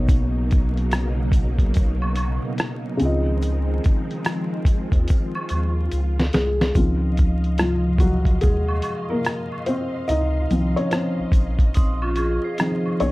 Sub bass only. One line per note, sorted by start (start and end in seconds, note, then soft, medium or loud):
0.00 1.56 B1 loud
1.59 2.39 B1 medium
3.01 3.80 C#2 loud
4.92 5.06 D#2 medium
5.51 5.88 D#2 medium
5.92 6.30 C#2 medium
6.34 6.72 C2 medium
6.75 8.23 C#2 loud
8.26 8.40 C#2 medium
8.44 8.81 D#2 medium
10.09 10.47 C#2 loud
10.50 10.75 C2 medium
11.19 11.25 A#1 soft
11.32 12.39 A#1 medium
13.01 13.12 B1 loud